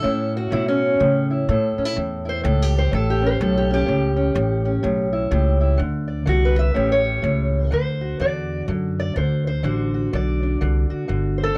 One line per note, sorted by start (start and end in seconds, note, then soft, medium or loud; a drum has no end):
0.00 0.50 A2 medium
0.00 0.68 C#4 soft
0.00 0.52 E4 soft
0.00 0.36 A4 loud
0.04 0.51 A2 medium
0.37 1.01 F#4 medium
0.51 0.99 A2 medium
0.51 0.99 B2 medium
0.51 0.68 E4 medium
0.68 1.30 C#4 medium
1.00 1.49 A2 medium
1.00 1.47 C#3 medium
1.31 1.78 E4 soft
1.49 1.76 A2 medium
1.49 1.95 A2 medium
1.49 2.29 A4 soft
1.78 1.85 C#4 soft
1.78 muted upright bass stroke soft
1.85 1.96 E4 soft
1.96 2.43 E2 medium
1.96 2.43 A2 medium
2.25 2.62 E4 soft
2.25 2.44 C5 loud
2.43 2.91 C#2 loud
2.43 2.91 A2 medium
2.43 2.77 A4 medium
2.62 3.09 G4 medium
2.79 2.93 C5 loud
2.91 3.39 A1 medium
2.91 3.38 A2 medium
2.91 3.25 A4 medium
3.10 3.56 G4 medium
3.22 3.69 C#4 soft
3.26 3.41 C5 medium
3.40 3.87 B1 loud
3.40 3.85 A2 medium
3.40 4.05 A4 medium
3.58 3.72 G4 medium
3.71 3.86 C#4 soft
3.71 5.12 G4 loud
3.86 4.35 C#2 medium
3.86 4.33 A2 medium
3.86 4.15 C#4 medium
4.16 4.64 C#4 soft
4.34 4.82 A1 loud
4.34 4.82 A2 medium
4.65 5.78 C#4 soft
4.83 5.30 B1 medium
4.83 5.30 A2 medium
5.13 5.60 E4 soft
5.31 5.78 C#2 medium
5.31 5.77 A2 medium
5.31 5.77 G4 soft
5.61 5.78 E4 soft
5.78 6.26 D2 medium
5.78 6.24 D3 medium
6.08 6.27 D5 soft
6.26 6.74 C2 medium
6.26 6.73 D3 medium
6.26 6.59 F#4 medium
6.45 6.75 B4 medium
6.59 6.91 E5 medium
6.74 7.23 A1 medium
6.74 7.21 A2 medium
6.74 7.69 C#4 medium
6.74 7.03 G4 soft
6.92 7.72 C#5 medium
7.05 7.70 G4 soft
7.22 7.70 C#2 medium
7.22 7.69 A2 medium
7.70 8.19 D2 medium
7.70 8.20 D3 medium
7.70 8.21 C5 medium
8.01 9.64 F#4 soft
8.20 8.66 E2 medium
8.20 8.69 D3 medium
8.20 8.69 D5 medium
8.68 9.15 F#2 medium
8.68 9.16 D3 medium
9.00 9.17 D5 medium
9.16 9.63 D2 medium
9.16 9.63 D3 medium
9.16 9.46 C5 medium
9.47 10.13 C5 medium
9.63 10.11 A1 medium
9.63 10.12 D3 medium
9.63 10.43 D4 soft
9.63 9.94 F#4 soft
9.94 10.90 F#4 soft
10.13 10.60 B1 medium
10.13 10.60 D3 medium
10.13 11.10 D5 medium
10.43 11.55 D4 soft
10.61 10.88 C2 medium
10.61 11.08 D3 medium
10.90 11.43 F#4 soft
10.90 muted upright bass stroke soft
11.08 11.56 G1 medium
11.08 11.54 D3 medium
11.38 11.58 C5 soft
11.44 11.58 A4 loud